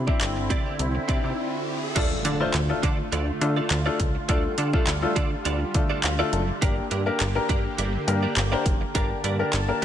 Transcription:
Already playing: analog synth bass C3, supersaw synth D3 C4 E4, riser
0.07 grand piano C4 D4 E4, clean electric guitar C4 E4 G4 D5, kick
0.21 analog synth bass G1, clap, closed hi-hat
0.36 muted clean electric guitar stroke
0.50 analog synth bass C3, clean electric guitar C4 E4 G4 D5, kick, closed hi-hat
0.65 clean electric guitar C4 E4 G4 D5
0.79 analog synth bass C2, muted clean electric guitar stroke, closed hi-hat
0.95 muted clean electric guitar stroke
1.08 analog synth bass C3, clean electric guitar C4 E4 G4 D5, grand piano C4 D4 E4, kick, closed hi-hat
1.24 analog synth bass C3, clean electric guitar C4 E4 G4 D5
1.95 analog synth bass D2, supersaw synth D3 A3 F4, grand piano A3 D4 F4 A4, clean electric guitar D4 F4 A4 D5, kick, closed hi-hat, crash, impact
2.11 muted clean electric guitar stroke
2.25 analog synth bass D3, clean electric guitar D4 F4 A4 D5, closed hi-hat
2.40 grand piano A3 D4 F4 C5, clean electric guitar D4 F4 A4 D5
2.54 analog synth bass D2, clap, closed hi-hat
2.69 grand piano A3 D4 F4 A4, muted clean electric guitar stroke
2.83 analog synth bass D3, clean electric guitar D4 F4 A4 D5, kick, closed hi-hat
2.98 muted clean electric guitar stroke
3.12 analog synth bass D2, clean electric guitar D4 F4 A4 D5, closed hi-hat
3.28 muted clean electric guitar stroke
3.41 analog synth bass D3, grand piano A3 D4 F4 A4, muted clean electric guitar stroke, closed hi-hat
3.56 clean electric guitar D4 F4 A4 D5
3.70 analog synth bass D2, clap, closed hi-hat
3.86 grand piano A3 D4 F4 A4, clean electric guitar D4 F4 A4 D5
4.00 analog synth bass C#2, muted clean electric guitar stroke, kick, closed hi-hat
4.15 muted clean electric guitar stroke
4.28 analog synth bass D2, supersaw synth G3, grand piano A3 D4 F4 A4, clean electric guitar D4 F4 A4 D5, kick, closed hi-hat
4.44 muted clean electric guitar stroke
4.58 analog synth bass D3, clean electric guitar D4 F4 A4 D5, closed hi-hat
4.73 grand piano A3 D4 F4 A4, clean electric guitar D4 F4 A4 D5, kick
4.87 analog synth bass D2, clap, closed hi-hat
5.02 grand piano A3 D4 F4 A4, muted clean electric guitar stroke
5.16 analog synth bass D3, clean electric guitar D4 F4 A4 D5, kick, closed hi-hat
5.31 muted clean electric guitar stroke
5.45 analog synth bass D2, clean electric guitar D4 F4 A4 D5, closed hi-hat
5.61 muted clean electric guitar stroke
5.74 analog synth bass D3, grand piano A3 D4 F4 A4, muted clean electric guitar stroke, kick, closed hi-hat
5.90 clean electric guitar D4 F4 A4 D5
6.03 analog synth bass D2, grand piano F5, clap, closed hi-hat
6.19 grand piano A3 D4 F4 A4, clean electric guitar D4 F4 A4 D5
6.33 analog synth bass F#1, grand piano A5, closed hi-hat
6.48 muted clean electric guitar stroke
6.61 analog synth bass G1, grand piano A#3 D4 G4 A#4, supersaw synth A#3 G4, clean electric guitar D4 G4 A#4 D5, kick, closed hi-hat
6.77 muted clean electric guitar stroke
6.91 analog synth bass G2, clean electric guitar D4 G4 A#4 D5, closed hi-hat
7.06 grand piano A#3 D4 G4 A#4, clean electric guitar D4 G4 A#4 D5
7.20 analog synth bass G1, clap, closed hi-hat
7.35 grand piano A#3 D4 G4 A#4, muted clean electric guitar stroke
7.49 analog synth bass G2, clean electric guitar D4 G4 A#4 D5, kick, closed hi-hat
7.65 muted clean electric guitar stroke
7.78 analog synth bass G1, clean electric guitar D4 G4 A#4 D5, closed hi-hat
7.94 muted clean electric guitar stroke
8.07 analog synth bass G2, grand piano A#3 D4 G4 A#4, muted clean electric guitar stroke, closed hi-hat
8.23 clean electric guitar D4 G4 A#4 D5
8.36 analog synth bass G1, muted clean electric guitar stroke, clap, closed hi-hat
8.52 grand piano A#3 D4 G4 C5, clean electric guitar D4 G4 A#4 D5
8.66 analog synth bass F#1, muted clean electric guitar stroke, kick, closed hi-hat
8.81 muted clean electric guitar stroke
8.95 analog synth bass G1, grand piano A#3 D4 G4 A#4, clean electric guitar D4 G4 A#4 D5, supersaw synth A5, kick, closed hi-hat
9.10 muted clean electric guitar stroke
9.24 analog synth bass G2, clean electric guitar D4 G4 A#4 D5, closed hi-hat
9.39 grand piano A#3 D4 G4 A#4, clean electric guitar D4 G4 A#4 D5
9.53 analog synth bass G1, clap, closed hi-hat
9.68 grand piano A#3 D4 G4 A#4, muted clean electric guitar stroke

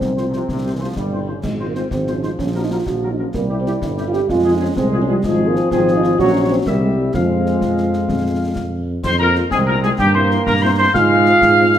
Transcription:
Already playing: euphonium C4
0.01 tuba C2, trombone section G#2, concert bass drum, snare
0.17 french horn section F3 G#3 F4, trumpet section C5, snare
0.27 trombone section A#2
0.33 trombone section C3, french horn section F3 G#3 F4, trumpet section C5, snare
0.49 tuba C2, trombone section C3, concert bass drum, snare
0.66 french horn section G3 C4 E4, trumpet section C5
0.74 trombone section E3
0.81 trombone section F3, french horn section G3 C4 E4, trumpet section C5
0.96 tuba G1, trombone section G3, concert bass drum, snare
1.12 french horn section G3 C4 E4, trumpet section C5
1.28 trombone section C#3, french horn section G3 C4 E4, trumpet section C5
1.43 tuba G#1, euphonium G#3, concert bass drum, snare, crash
1.60 french horn section G#3 C4 F4, trumpet section C5
1.68 euphonium A#3
1.75 french horn section G#3 C4 F4, euphonium C4, trumpet section C5, snare
1.91 tuba G#1, trombone section F3, euphonium C4, concert bass drum, snare
2.07 french horn section G#3 C4 F4, trumpet section C5, snare
2.16 euphonium C#4
2.23 french horn section G#3 C4 F4, euphonium D#4, trumpet section C5, snare
2.39 tuba A#1, euphonium C#4, concert bass drum, snare
2.55 french horn section F#3 C#4 F#4, trumpet section A#4
2.63 euphonium D#4
2.71 french horn section F#3 C#4 F#4, euphonium F4, trumpet section A#4
2.86 tuba A#1, euphonium F#4, concert bass drum, snare
3.02 french horn section F#3 C#4 F#4, trumpet section A#4
3.11 euphonium D#4
3.19 french horn section F#3 C#4 F#4, euphonium C#4, trumpet section A#4
3.34 tuba C2, trombone section G3, euphonium A#3, concert bass drum, snare
3.50 french horn section G3 C4 E4, trumpet section G4
3.60 euphonium C4
3.65 french horn section G3 C4 E4, euphonium E4, trumpet section G4, snare
3.82 tuba G1, euphonium E4, concert bass drum, snare
3.97 french horn section G3 C4 E4, trumpet section G4, snare
4.08 euphonium F4
4.13 french horn section G3 C4 E4, euphonium G4, trumpet section G4, snare
4.28 tuba F2, trombone section G#3, euphonium F4, concert bass drum, snare
4.45 french horn section F3 C4 F4, trumpet section G#4
4.54 euphonium D#4
4.61 french horn section F3 C4 F4, euphonium C#4, trumpet section G#4
4.75 tuba C2, trombone section G#3, euphonium C4, concert bass drum, snare
4.92 french horn section F3 C4 F4, trumpet section G#4
5.02 euphonium C#4
5.08 french horn section F3 C4 F4, euphonium G3, trumpet section G#4
5.23 tuba G#1, trombone section F3, french horn section F3 C4 F4, euphonium G#3, trumpet section G#4, concert bass drum, snare, crash
5.48 euphonium A#3
5.56 euphonium C4, snare
5.71 tuba G#1, french horn section F3 C4 F4, trombone section F3, euphonium C4, trumpet section G#4, concert bass drum, snare
5.88 snare
5.97 euphonium D#4
6.04 euphonium F4, snare
6.18 tuba A#1, trombone section F#3, french horn section A#3 C#4 F#4, euphonium F#4, trumpet section C#5, concert bass drum, snare
6.35 euphonium C#4
6.43 french horn section G#3, trumpet section C#5
6.51 euphonium C4
6.66 tuba C2, trombone section G3, french horn section G3 C4 G4, euphonium A#3, trumpet section E5, concert bass drum, snare
6.82 euphonium G#3
6.99 euphonium G3
7.14 tuba F2, euphonium F3, french horn section G#3 C4 F4, trombone section G#3, trumpet section F5, concert bass drum, snare
7.46 snare
7.61 tuba F2, concert bass drum, snare
7.78 snare
7.93 snare
8.09 tuba F2, concert bass drum, snare
8.56 tuba F2, concert bass drum, snare
9.04 tuba F2, euphonium C4, trumpet section C5, piccolo C6, concert bass drum, snare, crash
9.19 french horn section G#3 C4 F4, euphonium A#3, trumpet section A#4, piccolo A#5
9.35 french horn section G#3 C4 F4, snare
9.51 tuba C2, euphonium G#3, trombone section C4, trumpet section G#4, piccolo G#5, concert bass drum, snare
9.67 french horn section G#3 C4 F4, euphonium A#3, trumpet section A#4, piccolo A#5
9.83 euphonium G#3, french horn section G#3 C4 F4, trumpet section G#4, piccolo G#5, snare
9.98 tuba G2, euphonium G3, trombone section A#3, trumpet section G4, piccolo G5, concert bass drum, snare
10.15 french horn section A#3 C4 E4, euphonium C4, trumpet section C5, piccolo C6
10.31 french horn section A#3 C4 E4, snare
10.46 tuba G2, euphonium A#3, trumpet section A#4, piccolo A#5, concert bass drum, snare
10.62 french horn section A#3 C4 E4, euphonium C4, trumpet section C5, piccolo C6
10.78 french horn section A#3 C4 E4, euphonium C4, trumpet section C5, piccolo C6
10.94 tuba G#2, trombone section G#3, euphonium F4, trumpet section F5, piccolo F6, concert bass drum, snare
11.11 french horn section G#3 C4 F4
11.26 french horn section G#3 C4 F4, snare
11.41 tuba G#2, concert bass drum, snare
11.59 french horn section G#3 C4 F4
11.73 french horn section G#3 C4 F4, snare

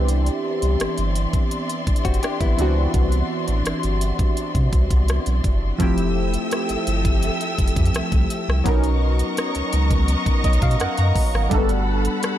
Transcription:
Already playing: sub bass C2, synth keys E3 B3 C4 D4 G4, string section D5 E5 C6
0.08 closed hi-hat
0.26 closed hi-hat
0.62 sub bass C2, closed hi-hat
0.80 sub bass G1, cross-stick, closed hi-hat
0.98 sub bass G1, closed hi-hat
1.16 closed hi-hat
1.33 kick, closed hi-hat
1.51 closed hi-hat
1.69 closed hi-hat
1.87 sub bass F#1, kick, closed hi-hat
1.96 closed hi-hat
2.05 sub bass F#1, clean electric guitar C4 F#4, kick, closed hi-hat
2.14 closed hi-hat
2.23 clean electric guitar D4 G4, cross-stick, closed hi-hat
2.40 sub bass A1, clean electric guitar B3 E4, kick, closed hi-hat
2.57 sub bass C#2, synth keys E3 B3 C4 D4, closed hi-hat
2.61 synth keys F#4
2.94 sub bass C2, kick, closed hi-hat
3.12 closed hi-hat
3.48 sub bass A1, closed hi-hat
3.66 sub bass G1, cross-stick, closed hi-hat
3.83 sub bass G1, closed hi-hat
4.01 closed hi-hat
4.19 kick, closed hi-hat
4.37 closed hi-hat
4.55 sub bass C3, kick, closed hi-hat
4.73 sub bass C2, kick, closed hi-hat
4.91 sub bass C2, kick, closed hi-hat
5.08 cross-stick, closed hi-hat
5.26 sub bass B1, closed hi-hat
5.44 sub bass F#1, kick, closed hi-hat
5.78 sub bass F1, synth keys F3 A3 C4 E4, string section A4 E5 G5 E6, kick, closed hi-hat
5.83 synth keys G4
5.98 closed hi-hat
6.34 closed hi-hat
6.51 cross-stick, closed hi-hat
6.69 sub bass G1, closed hi-hat
6.87 sub bass G1, closed hi-hat
7.05 kick, closed hi-hat
7.23 closed hi-hat
7.41 closed hi-hat
7.58 sub bass F1, kick, closed hi-hat
7.68 closed hi-hat
7.76 sub bass F2, kick, closed hi-hat
7.85 closed hi-hat
7.94 sub bass C2, cross-stick, closed hi-hat
8.12 sub bass C2, kick, closed hi-hat
8.30 closed hi-hat
8.48 sub bass C2, cross-stick
8.64 sub bass B1, synth keys F#3 B3 C#4 D#4, string section B3 D#5 A#5 C#6, kick, closed hi-hat
8.68 synth keys A#4
8.84 closed hi-hat
9.19 closed hi-hat
9.37 cross-stick, closed hi-hat
9.55 sub bass C#2, closed hi-hat
9.73 sub bass C#2, closed hi-hat
9.91 kick, closed hi-hat
10.08 closed hi-hat
10.26 kick, closed hi-hat
10.44 sub bass B1, synth keys D#5, kick, closed hi-hat
10.53 closed hi-hat
10.62 sub bass B2, synth keys F5, kick, closed hi-hat
10.71 closed hi-hat
10.80 sub bass F#2, synth keys F#5, cross-stick, closed hi-hat
10.97 sub bass F#2, synth keys A#5, closed hi-hat
11.16 kick, open hi-hat
11.34 sub bass G#1, cross-stick
11.49 sub bass G1, synth keys G3 A3 D4 F#4, string section A4 F#5 A5 B5, kick, closed hi-hat
11.54 synth keys B3 A4
11.69 closed hi-hat
12.05 closed hi-hat
12.23 cross-stick, closed hi-hat

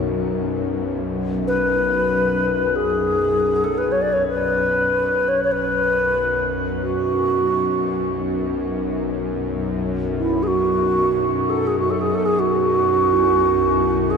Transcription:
Already playing: synth drone B1 F#2, singing bowl F#4
1.47 bass flute B4
2.76 bass flute G#4
3.64 bass flute A4
3.78 bass flute B4
3.92 bass flute C#5
4.01 bass flute D5
4.13 bass flute C#5
4.28 bass flute B4
4.54 synth drone B1 F#2
5.28 bass flute C#5
5.44 bass flute C#5
5.52 bass flute B4
6.80 bass flute F#4
10.19 bass flute E4
10.43 bass flute G#4
10.47 bass flute F#4
11.50 bass flute A4
11.67 bass flute G#4
11.79 bass flute F#4
11.91 bass flute A4
12.01 bass flute G#4
12.15 bass flute A4
12.26 bass flute G#4
12.39 bass flute F#4
13.12 singing bowl E4
14.10 bass flute G#4

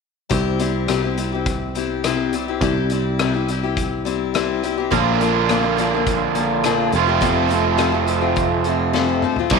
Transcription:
0.29 picked electric bass C2, steel-string acoustic guitar C3 G3 C4 E4 G4, kick, closed hi-hat
0.59 steel-string acoustic guitar G3 C4 E4 G4, closed hi-hat
0.88 steel-string acoustic guitar C3 G3 C4 E4 G4, cross-stick, closed hi-hat
1.03 steel-string acoustic guitar C4 E4 G4
1.17 steel-string acoustic guitar G3 C4 E4 G4, closed hi-hat
1.33 steel-string acoustic guitar C4 E4 G4
1.46 kick, closed hi-hat
1.75 steel-string acoustic guitar G3 C4 E4 G4, closed hi-hat
2.04 steel-string acoustic guitar C3 G3 C4 E4 G4, cross-stick, closed hi-hat
2.33 steel-string acoustic guitar G3 C4 E4 G4, closed hi-hat
2.48 steel-string acoustic guitar C4 E4 G4
2.61 picked electric bass C2, steel-string acoustic guitar C3 G3 C4 E4 G4, kick, closed hi-hat
2.90 steel-string acoustic guitar G3 C4 E4 G4, closed hi-hat
3.19 steel-string acoustic guitar C3 G3 C4 E4 G4, cross-stick, closed hi-hat
3.34 steel-string acoustic guitar C4 E4 G4
3.48 steel-string acoustic guitar G3 C4 E4 G4, closed hi-hat
3.63 steel-string acoustic guitar C4 E4 G4
3.77 kick, closed hi-hat
4.05 steel-string acoustic guitar G3 C4 E4 G4, closed hi-hat
4.34 steel-string acoustic guitar C3 G3 C4 E4 G4, cross-stick, closed hi-hat
4.63 steel-string acoustic guitar G3 C4 E4 G4, closed hi-hat
4.77 steel-string acoustic guitar C4 E4 G4
4.91 picked electric bass A#1, steel-string acoustic guitar A#2 F3 A#3 D4 F4, overdriven electric guitar D3, kick, closed hi-hat
5.20 steel-string acoustic guitar F3 A#3 D4 F4, closed hi-hat
5.49 steel-string acoustic guitar A#2 F3 A#3 D4 F4, cross-stick, closed hi-hat
5.63 steel-string acoustic guitar A#3 D4 F4
5.77 steel-string acoustic guitar F3 A#3 D4 F4, closed hi-hat
5.94 steel-string acoustic guitar A#3 D4 F4
6.06 kick, closed hi-hat
6.35 steel-string acoustic guitar F3 A#3 D4 F4, closed hi-hat
6.64 steel-string acoustic guitar A#2 F3 A#3 D4 F4, cross-stick, closed hi-hat
6.92 picked electric bass F1, overdriven electric guitar F2, steel-string acoustic guitar F3 A3 C4 F4, closed hi-hat
6.96 overdriven electric guitar C3 F3 C4
7.07 steel-string acoustic guitar F3 A3 C4 F4
7.21 steel-string acoustic guitar F2 C3 F3 A3 C4 F4, kick, closed hi-hat
7.47 steel-string acoustic guitar F3 A3 C4 F4, closed hi-hat
7.78 steel-string acoustic guitar F2 C3 F3 A3 C4 F4, cross-stick, closed hi-hat
7.92 steel-string acoustic guitar F3 A3 C4 F4
8.07 steel-string acoustic guitar F3 A3 C4 F4, closed hi-hat
8.21 steel-string acoustic guitar F3 A3 C4 F4
8.36 kick, closed hi-hat
8.64 steel-string acoustic guitar F3 A3 C4, closed hi-hat
8.68 steel-string acoustic guitar F4
8.93 steel-string acoustic guitar F2 C3 F3 A3 C4 F4, snare
9.22 steel-string acoustic guitar F3 A3 C4 F4, mid tom
9.36 steel-string acoustic guitar A3 C4 F4, floor tom
9.41 steel-string acoustic guitar F3
9.50 picked electric bass C2, steel-string acoustic guitar C3 G3 C4 E4, overdriven electric guitar E3, kick, crash
9.54 steel-string acoustic guitar G4

